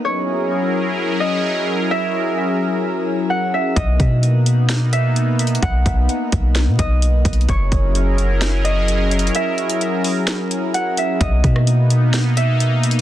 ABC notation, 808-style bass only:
X:1
M:4/4
L:1/16
Q:1/4=129
K:B
V:1 name="808-style bass" clef=bass
z16 | z16 | B,,,2 B,,12- B,,2 | B,,,2 B,,,2 z2 B,,,3 B,, B,,,4 B,,,2 |
z2 F,,,12- F,,,2 | z16 | B,,,2 B,,12- B,,2 |]